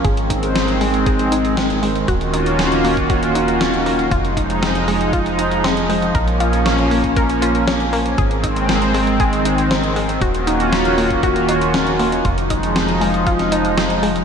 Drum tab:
HH |xxxxxxoxxxxxxxox|xxxxxxoxxxxxxxox|xxxxxxoxxxxxxxox|xxxxxxoxxxxxxxox|
SD |----o-------o---|----o-------o---|----o-------o---|----o-------o---|
BD |o-o-----o-------|o------oo-------|o-o-----o-------|o------oo-------|

HH |xxxxxxoxxxxxxxox|xxxxxxoxxxxxxxox|xxxxxxoxxxxxxxox|
SD |----o-------o---|----o-------o---|----o----o--o---|
BD |o-o-----o-------|o------oo-------|o-o-----o-------|